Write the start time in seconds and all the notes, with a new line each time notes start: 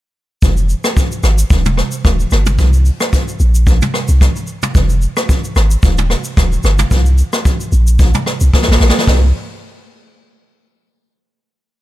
0.42 F1, kick, shaker
0.57 shaker
0.69 shaker
0.84 cross-stick, shaker
0.97 kick, shaker
1.12 shaker
1.23 G#1, cross-stick, shaker
1.38 shaker
1.50 D#1, kick, shaker
1.65 mid tom, shaker
1.77 cross-stick, shaker
1.92 shaker
2.05 D#1, kick, cross-stick, shaker
2.20 shaker
2.31 G1, cross-stick, shaker
2.46 mid tom, shaker
2.59 C2, kick, shaker
2.73 shaker
2.85 open hi-hat, shaker
3.00 cross-stick, shaker
3.13 kick, hi-hat pedal, shaker
3.28 shaker
3.40 A#1, shaker
3.55 shaker
3.67 kick, shaker
3.82 mid tom, shaker
3.94 cross-stick, open hi-hat, shaker
4.08 C2, shaker
4.21 kick, cross-stick, hi-hat pedal, shaker
4.36 shaker
4.47 shaker
4.63 mid tom, shaker
4.75 F1, kick, shaker
4.90 shaker
5.02 shaker
5.17 cross-stick, shaker
5.29 kick, shaker
5.44 shaker
5.56 G#1, cross-stick, shaker
5.71 shaker
5.83 D#1, kick, shaker
5.98 mid tom, shaker
6.10 cross-stick, open hi-hat, shaker
6.24 shaker
6.37 D#1, kick, cross-stick, hi-hat pedal, shaker
6.52 shaker
6.63 G1, cross-stick, shaker
6.79 mid tom, shaker
6.91 C2, kick, shaker
7.06 shaker
7.18 shaker
7.33 cross-stick, shaker
7.45 kick, shaker
7.61 shaker
7.72 A#1, shaker
7.87 shaker
7.99 kick, shaker
8.14 mid tom, shaker
8.26 cross-stick, open hi-hat, shaker
8.40 C2, shaker
8.53 kick, snare
8.62 snare
8.68 A#1, snare
8.80 A#1, snare
8.89 snare
8.98 snare
9.07 C2, kick, snare, open hi-hat